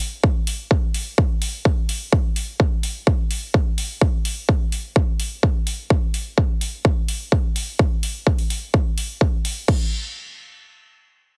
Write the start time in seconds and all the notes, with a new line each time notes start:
0.24 kick
0.47 open hi-hat
0.71 kick
0.94 open hi-hat
1.18 kick
1.42 open hi-hat
1.65 kick
1.89 open hi-hat
2.13 kick
2.36 open hi-hat
2.60 kick
2.83 open hi-hat
3.07 kick
3.31 open hi-hat
3.54 kick
3.78 open hi-hat
4.01 kick
4.25 open hi-hat
4.49 kick
4.72 open hi-hat
4.96 kick
5.20 open hi-hat
5.43 kick
5.67 open hi-hat
5.90 kick
6.14 open hi-hat
6.38 kick
6.61 open hi-hat
6.85 kick
7.08 open hi-hat
7.32 kick
7.56 open hi-hat
7.79 kick
8.03 open hi-hat
8.27 kick
8.38 open hi-hat
8.50 open hi-hat
8.74 kick
8.98 open hi-hat
9.21 kick
9.45 open hi-hat
9.68 kick, crash